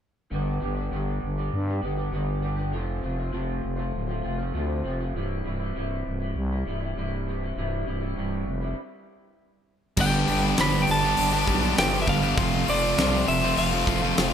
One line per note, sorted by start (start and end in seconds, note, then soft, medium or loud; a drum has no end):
0.30 0.59 G1 medium
0.30 0.89 G2 medium
0.30 0.90 D3 medium
0.30 0.59 G3 medium
0.30 0.60 B3 medium
0.30 0.62 D4 medium
0.30 0.63 G4 medium
0.60 0.90 G1 medium
0.60 0.78 G3 medium
0.60 0.76 B3 medium
0.60 0.76 D4 medium
0.60 0.74 G4 medium
0.75 0.92 B3 soft
0.75 0.92 D4 medium
0.75 0.93 G4 medium
0.79 0.90 G3 soft
0.90 1.20 G1 medium
0.90 1.67 G2 medium
0.90 1.67 D3 medium
0.90 1.39 G3 medium
0.90 1.38 B3 medium
0.90 1.37 D4 medium
0.90 1.36 G4 medium
1.24 1.51 G1 medium
1.37 1.69 G3 medium
1.37 1.69 B3 soft
1.37 1.67 D4 medium
1.37 1.66 G4 medium
1.54 1.81 G2 medium
1.67 1.80 G3 medium
1.67 1.82 B3 medium
1.67 1.83 D4 medium
1.67 1.84 G4 medium
1.82 2.11 G1 medium
1.82 1.99 G3 medium
1.82 1.97 B3 medium
1.82 1.97 D4 medium
1.82 1.95 G4 medium
1.96 2.12 G3 soft
1.96 2.12 B3 soft
1.96 2.13 D4 medium
1.96 2.13 G4 medium
2.11 2.74 G1 medium
2.11 2.71 G2 medium
2.11 2.71 D3 medium
2.11 2.40 G3 medium
2.11 2.41 B3 medium
2.11 2.42 D4 medium
2.11 2.43 G4 medium
2.41 2.59 G3 medium
2.41 2.58 B3 medium
2.41 2.56 D4 medium
2.41 2.55 G4 medium
2.56 2.72 G3 soft
2.56 2.72 B3 medium
2.56 2.71 D4 medium
2.56 2.71 G4 medium
2.71 3.01 F1 medium
2.71 3.30 F2 medium
2.71 3.31 C3 medium
2.71 3.00 F3 medium
2.71 3.01 A3 medium
2.71 3.03 C4 medium
2.71 3.03 F4 medium
3.01 3.32 F1 medium
3.01 3.19 F3 medium
3.01 3.18 A3 medium
3.01 3.17 C4 medium
3.01 3.15 F4 medium
3.16 3.31 F3 soft
3.16 3.32 A3 medium
3.16 3.33 C4 medium
3.16 3.33 F4 medium
3.31 3.62 F1 medium
3.31 4.08 F2 medium
3.31 4.09 C3 medium
3.31 3.79 F3 medium
3.31 3.78 A3 medium
3.31 3.77 C4 medium
3.31 3.75 F4 medium
3.65 3.92 F1 medium
3.76 4.10 F3 soft
3.76 4.09 A3 medium
3.76 4.08 C4 medium
3.76 4.06 F4 medium
3.94 4.22 D1 medium
4.07 4.21 F3 soft
4.07 4.22 A3 medium
4.07 4.24 C4 medium
4.07 4.24 F4 medium
4.22 4.53 F1 medium
4.22 4.40 F3 medium
4.22 4.39 A3 medium
4.22 4.38 C4 medium
4.22 4.37 F4 medium
4.38 4.53 F3 soft
4.38 4.54 A3 medium
4.38 4.55 C4 medium
4.38 4.55 F4 medium
4.53 4.83 D2 medium
4.53 5.13 F2 medium
4.53 5.13 C3 medium
4.53 4.82 F3 medium
4.53 4.84 A3 medium
4.53 4.86 C4 medium
4.53 4.86 F4 medium
4.84 5.13 F1 medium
4.84 5.01 F3 medium
4.84 5.00 A3 medium
4.84 4.99 C4 medium
4.84 4.97 F4 medium
4.98 5.15 F3 soft
4.98 5.14 A3 medium
4.98 8.50 C4 medium
4.98 5.13 F4 medium
5.14 5.42 C1 medium
5.14 5.74 C2 medium
5.14 5.43 G2 medium
5.14 5.45 C3 medium
5.14 5.46 G3 medium
5.14 5.47 E4 medium
5.44 5.73 C1 medium
5.44 5.74 G2 medium
5.44 5.63 C3 medium
5.44 5.61 G3 medium
5.44 5.59 E4 medium
5.60 5.76 C3 soft
5.60 5.77 G3 medium
5.60 5.77 E4 medium
5.74 6.04 C1 medium
5.74 6.51 C2 medium
5.74 6.51 G2 medium
5.74 6.22 C3 medium
5.74 6.21 G3 medium
5.74 6.18 E4 medium
6.07 6.34 C1 medium
6.20 6.52 C3 soft
6.20 6.51 G3 medium
6.20 6.49 E4 medium
6.36 6.64 C2 medium
6.50 6.66 C3 medium
6.50 6.67 G3 medium
6.50 6.68 E4 medium
6.66 6.94 C1 medium
6.66 6.96 G2 medium
6.66 6.83 C3 medium
6.66 6.82 G3 medium
6.66 6.79 E4 medium
6.81 6.96 C3 soft
6.81 6.97 G3 medium
6.81 6.98 E4 medium
6.95 7.53 C1 medium
6.95 7.55 C2 medium
6.95 7.25 G2 medium
6.95 7.26 C3 medium
6.95 7.27 G3 medium
6.95 7.28 E4 medium
7.26 7.56 G2 medium
7.26 7.43 C3 medium
7.26 7.42 G3 medium
7.26 7.40 E4 medium
7.41 7.57 C3 medium
7.41 7.57 G3 medium
7.41 7.58 E4 medium
7.56 7.85 C1 medium
7.56 8.14 C2 medium
7.56 7.84 G2 medium
7.56 7.86 C3 medium
7.56 7.87 G3 medium
7.56 7.88 E4 medium
7.85 8.15 C1 medium
7.85 8.15 G2 medium
7.85 8.03 C3 medium
7.85 8.01 G3 medium
7.85 8.00 E4 medium
8.01 8.16 C3 medium
8.01 8.17 G3 medium
8.01 8.17 E4 medium
8.15 8.45 C1 medium
8.15 8.75 C2 medium
8.15 8.75 G2 medium
8.15 8.63 C3 medium
8.15 8.61 G3 medium
8.15 8.59 E4 medium
8.47 8.75 F1 medium
8.61 8.77 C3 soft
8.61 8.76 G3 medium
8.61 8.75 E4 medium
9.97 10.25 G1 loud
9.97 10.56 G2 loud
9.97 10.57 D3 loud
9.97 10.25 G3 loud
9.97 10.27 B3 loud
9.97 10.28 D4 loud
9.97 12.35 G4 medium
9.97 10.28 G4 loud
9.97 12.35 B4 medium
9.97 12.36 D5 medium
9.97 10.61 G5 loud
9.97 12.35 B5 medium
9.97 kick loud
9.97 crash loud
10.27 10.56 G1 loud
10.27 10.57 G3 medium
10.27 10.57 B3 medium
10.27 10.58 D4 medium
10.27 10.58 G4 medium
10.27 open hi-hat medium
10.41 10.57 G3 medium
10.41 10.58 B3 medium
10.41 10.58 D4 medium
10.41 10.58 G4 medium
10.57 10.86 G1 medium
10.57 11.03 G2 loud
10.57 11.03 D3 loud
10.57 10.73 G3 loud
10.57 10.72 B3 loud
10.57 10.71 D4 loud
10.57 10.71 G4 loud
10.57 10.83 B5 loud
10.57 snare loud
10.57 open hi-hat medium
10.72 10.87 G3 medium
10.72 10.87 B3 medium
10.72 10.88 D4 medium
10.72 10.88 G4 medium
10.82 10.89 G5 medium
10.87 11.15 G1 loud
10.87 muted distorted electric guitar stroke medium
10.87 open hi-hat medium
10.91 11.76 A5 loud
11.03 11.33 G3 medium
11.03 11.33 B3 medium
11.03 11.32 D4 medium
11.03 11.31 G4 medium
11.17 11.45 G1 loud
11.17 open hi-hat medium
11.32 11.46 G3 medium
11.32 11.47 B3 medium
11.32 11.48 D4 medium
11.32 11.49 G4 medium
11.47 11.75 B1 medium
11.47 11.63 G3 medium
11.47 11.62 B3 medium
11.47 11.62 D4 medium
11.47 11.61 G4 loud
11.47 kick medium
11.47 open hi-hat medium
11.62 11.76 G3 medium
11.62 11.77 B3 medium
11.62 11.77 D4 medium
11.62 11.78 G4 medium
11.77 12.05 G1 loud
11.77 12.22 G2 medium
11.77 12.22 D3 medium
11.77 11.93 G3 loud
11.77 11.92 B3 loud
11.77 11.91 D4 loud
11.77 11.91 G4 loud
11.77 12.01 G5 loud
11.77 snare loud
11.77 open hi-hat medium
11.92 12.23 G3 medium
11.92 12.23 B3 medium
11.92 12.22 D4 medium
11.92 12.21 G4 medium
12.02 12.08 E5 medium
12.07 12.35 G1 medium
12.07 12.23 G3 medium
12.07 12.22 B3 medium
12.07 12.21 D4 loud
12.07 12.21 G4 medium
12.07 12.70 F5 loud
12.07 kick medium
12.07 open hi-hat medium
12.22 12.37 G3 medium
12.22 12.37 B3 medium
12.22 12.36 D4 medium
12.22 12.36 G4 medium
12.38 12.65 F1 loud
12.38 12.96 F2 loud
12.38 12.97 C3 loud
12.38 12.66 F3 loud
12.38 12.67 A3 loud
12.38 12.69 C4 loud
12.38 14.33 F4 medium
12.38 12.68 F4 loud
12.38 14.33 A4 medium
12.38 14.33 C5 medium
12.38 14.33 C6 medium
12.38 kick loud
12.38 open hi-hat medium
12.67 12.95 F1 loud
12.67 12.97 F3 medium
12.67 12.97 A3 medium
12.67 12.99 C4 medium
12.67 12.98 F4 medium
12.67 13.24 D5 loud
12.67 open hi-hat medium
12.82 12.96 F3 medium
12.82 12.96 A3 medium
12.82 12.98 C4 medium
12.82 12.97 F4 medium
12.97 13.25 C2 medium
12.97 13.42 F2 loud
12.97 13.43 C3 loud
12.97 13.14 F3 loud
12.97 13.12 A3 loud
12.97 13.13 C4 loud
12.97 13.11 F4 loud
12.97 snare loud
12.97 open hi-hat medium
13.13 13.27 F3 medium
13.13 13.28 A3 medium
13.13 13.29 C4 medium
13.13 13.28 F4 medium
13.28 13.55 F1 loud
13.28 13.58 E5 medium
13.28 muted distorted electric guitar stroke medium
13.28 open hi-hat medium
13.42 13.73 F3 medium
13.42 13.73 A3 medium
13.42 13.73 C4 medium
13.42 13.71 F4 medium
13.57 13.84 F1 loud
13.57 14.33 F5 medium
13.57 open hi-hat medium
13.72 13.86 F3 medium
13.72 13.88 A3 medium
13.72 13.89 C4 medium
13.72 13.89 F4 medium
13.87 14.14 F1 medium
13.87 14.03 F3 medium
13.87 14.02 A3 medium
13.87 14.02 C4 loud
13.87 14.00 F4 medium
13.87 kick medium
13.87 open hi-hat medium
14.01 14.16 F3 medium
14.01 14.16 A3 medium
14.01 14.18 C4 medium
14.01 14.17 F4 medium
14.16 14.33 F1 loud
14.16 14.33 F2 medium
14.16 14.33 C3 loud
14.16 14.33 F3 loud
14.16 14.32 A3 loud
14.16 14.32 C4 loud
14.16 14.30 F4 loud
14.16 snare loud
14.16 open hi-hat medium